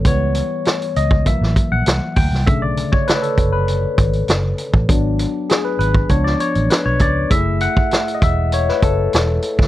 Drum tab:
HH |x-x-xxx-x-x-x-o-|x-x-xxx-x-xxx-x-|x-x-x-x-x-xxx-x-|x-x-xxx-x-x-x-x-|
SD |----o----o--o--o|----o-------o---|----o----o--o---|----o----o--o--o|
BD |o------oo-o---o-|o--o--o---o----o|o------oo-----o-|o--o--o---o----o|